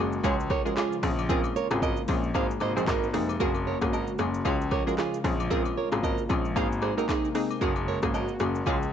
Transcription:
Already playing: C#3 G#3 A#3 C#4 F#4
0.00 F#1 G#4
0.13 shaker
0.24 C#2 F3 G#3 C#4 F4 G#4 C#5 F5, kick, high agogo, shaker
0.40 shaker
0.50 A#4 C#5, kick, cross-stick, high agogo
0.65 G#3 C#4 F4 F#4 G#4 A#4, shaker
0.77 F4 G#4, cross-stick, clap, high agogo, shaker
0.93 shaker
1.03 A#1 G#3 A#3 C4 C#4 F4 G#4, kick, cross-stick, open hi-hat, shaker
1.19 high agogo, shaker
1.29 C4 C#4 F4 G#4 A#4, kick, shaker
1.44 high agogo, shaker
1.56 A#4 C#5, shaker
1.71 G#1 C4 C#4 F4 G#4, cross-stick, high agogo, shaker
1.82 A#4 D#5, kick, low woodblock, shaker
1.97 shaker
2.08 A#1 C4 C#4 F4 G#4, kick, open hi-hat, high agogo, shaker
2.23 shaker
2.34 G#1 C3 A#3 C4 D#4 G#4 C5 F5, kick, high agogo, shaker
2.51 shaker
2.60 G#1 C5 D#5, cross-stick, high agogo, shaker
2.76 A#1 A#3 C4 D#4 G#4 C5, shaker
2.87 G#1 D#4 A#4, kick, cross-stick, clap, high agogo, shaker
3.04 shaker
3.13 F1 A#3 C4 D#4 G#4, cross-stick, open hi-hat, shaker
3.29 high agogo, shaker
3.40 F#1 C#3 A#3 C#4 F#4 G#4 A#4, kick, shaker
3.55 high agogo, shaker
3.67 A#4 C#5
3.81 G#1 A#3 C#4 F#4 G#4, kick, cross-stick, high agogo, shaker
3.93 A#4 D#5, low woodblock, shaker
4.07 shaker
4.19 F#1 A#3 C#4 F#4 G#4, cross-stick, high agogo, shaker
4.34 shaker
4.45 C#2 F3 G#3 C#4 F4 G#4 C#5 F5, kick, high agogo, shaker
4.62 shaker
4.71 A#4 C#5, kick, cross-stick, high agogo
4.87 G#3 C#4 F4 F#4 G#4 A#4, shaker
4.98 F4 G#4, cross-stick, clap, high agogo, shaker
5.14 shaker
5.24 A#1 A#3 C4 C#4 F4 G#4, kick, cross-stick, open hi-hat, shaker
5.40 high agogo, shaker
5.50 C4 C#4 F4 G#4 A#4, kick, shaker
5.65 high agogo, shaker
5.77 A#4 C#5
5.92 G#1 C4 C#4 F4 G#4, cross-stick, high agogo, shaker
6.03 A#4 D#5, kick, low woodblock, shaker
6.18 shaker
6.29 A#1 C4 C#4 F4 G#4, kick, high agogo, shaker
6.45 shaker
6.56 G#1 C3 A#3 C4 D#4 G#4 C5 F5, kick, high agogo, shaker
6.72 shaker
6.82 G#4 C5, cross-stick, high agogo
6.97 A#3 C4 D#4 F#4 G#4 A#4, shaker
7.09 D#4 G#4, kick, cross-stick, clap, high agogo, shaker
7.25 shaker
7.35 A#3 C4 D#4 G#4, cross-stick, open hi-hat, shaker
7.51 high agogo, shaker
7.61 F#1 C#3 A#3 C#4 F#4 G#4 A#4, kick, shaker
7.76 high agogo, shaker
7.88 A#4 C#5
8.02 G#1 A#3 C#4 F#4 G#4, kick, cross-stick, high agogo, shaker
8.14 A#4 D#5, low woodblock, shaker
8.28 shaker
8.40 F#1 A#3 C#4 F#4 G#4, cross-stick, high agogo, shaker
8.55 shaker
8.66 C#2 F3 G#3 C#4 F4 G#4 C#5 F5, kick, high agogo, shaker
8.83 shaker

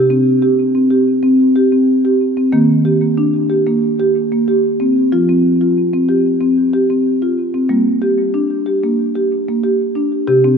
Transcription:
Already playing: C3 G4
0.10 C4
0.42 G4
0.75 C4
0.90 G4
1.23 C4
1.56 G4
1.72 C4
2.05 G4
2.37 C4
2.53 D#3 A#3
2.85 G4
3.18 D4
3.50 G4
3.67 A#3
4.00 G4
4.32 A#3
4.48 G4
4.80 C4
5.12 F3 F4
5.29 C4
5.61 F4
5.93 C4
6.09 G4
6.41 C4
6.73 G4
6.90 C4
7.22 F4
7.54 C4
7.69 G3 A#3
8.02 G4
8.34 D4
8.66 G4
8.84 A#3
9.15 G4
9.48 A#3
9.64 G4
9.95 D4
10.27 C3 G4
10.44 C4

